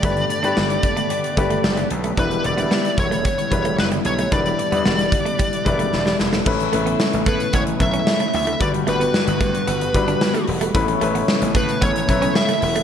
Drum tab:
CC |----------------|----------------|----------------|x---------------|
HH |xxxx-xxxxxxx-xxx|xxxx-xxxxxxx-xxx|xxxx-xxxxxxx----|-xxx-xxxxxxx-xox|
SD |----o-------o---|----o-------o---|----o-------oooo|----o-------o---|
BD |o-----o---o-----|o-----o-o-o-----|o-----o-o-o-----|o-----o-o-o-----|

CC |----------------|----------------|
HH |xxxx-xxxxxxx-xox|xxxx-xxxxxxx-xox|
SD |----o-------o---|----o-------o---|
BD |o-----o---o-----|o-----o-o-o-----|